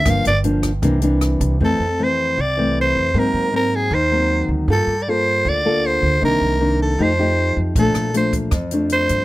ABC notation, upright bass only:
X:1
M:4/4
L:1/8
Q:1/4=156
K:F
V:1 name="Upright bass" clef=bass
G,,, G,,,3 C,,3 C,, | F,, F,,3 C,,3 F,, | _A,, A,,3 _E,,3 D,, | G,, G,,3 D,,3 D,, |
C,, C,,3 F,,3 F,, | B,,, B,,,3 F,,3 G,, |]